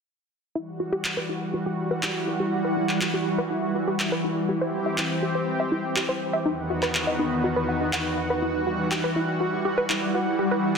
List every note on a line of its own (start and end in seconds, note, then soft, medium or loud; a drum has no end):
0.55 6.42 E3 medium
0.55 4.45 G3 medium
0.55 0.67 E4 medium
0.55 6.46 E4 medium
0.55 4.45 F#4 medium
0.79 5.28 G3 medium
0.79 0.85 F#4 medium
0.92 0.97 G4 loud
1.05 4.49 F#5 medium
1.05 clap loud
1.17 1.22 B4 medium
1.29 1.41 E4 medium
1.54 1.59 F#4 medium
1.66 1.71 G4 medium
1.91 1.96 B4 loud
2.03 2.15 E4 medium
2.03 clap loud
2.28 2.32 F#4 medium
2.40 2.45 G4 medium
2.65 2.69 B4 loud
2.77 2.89 E4 medium
2.89 clap soft
3.01 3.06 F#4 medium
3.01 clap loud
3.14 3.19 G4 loud
3.38 3.43 B4 medium
3.50 3.62 E4 medium
3.75 3.80 F#4 medium
3.88 3.92 G4 loud
4.00 clap loud
4.12 4.17 B4 medium
4.24 4.36 E4 medium
4.49 6.44 C4 medium
4.49 4.54 G4 medium
4.49 6.44 G4 medium
4.61 4.66 C5 loud
4.61 6.46 C5 medium
4.86 4.91 E5 loud
4.93 6.46 G5 medium
4.98 5.10 E4 medium
4.98 clap loud
5.23 5.28 G4 medium
5.35 5.40 C5 loud
5.60 5.64 E5 medium
5.72 5.84 E4 medium
5.96 6.01 G4 medium
5.96 clap loud
6.09 6.14 C5 loud
6.33 6.38 E5 medium
6.46 8.40 E2 medium
6.46 8.40 D#3 medium
6.46 8.40 B3 medium
6.46 6.57 D#4 medium
6.46 10.78 F#4 medium
6.62 8.42 D#4 medium
6.70 6.75 F#4 medium
6.70 9.44 B4 medium
6.82 6.87 B4 loud
6.82 clap soft
6.95 clap loud
7.07 7.12 D#5 medium
7.07 10.78 F#5 medium
7.19 7.31 D#4 medium
7.44 7.49 F#4 medium
7.56 7.61 B4 medium
7.69 7.77 F#5 medium
7.81 7.86 D#4 medium
7.93 8.05 F#5 loud
7.93 clap loud
8.18 8.26 F#5 medium
8.30 8.42 B4 medium
8.42 10.78 E3 medium
8.42 10.78 G3 medium
8.42 8.54 E4 medium
8.42 10.78 E4 medium
8.67 10.78 G3 medium
8.67 8.72 F#4 medium
8.91 8.96 G4 loud
8.91 clap loud
9.04 9.09 B4 medium
9.16 9.28 E4 medium
9.41 9.46 F#4 medium
9.65 9.70 G4 loud
9.78 9.82 B4 loud
9.90 10.02 E4 medium
9.90 clap loud
10.14 10.19 F#4 medium
10.39 10.44 G4 loud
10.51 10.56 B4 loud
10.63 10.75 E4 medium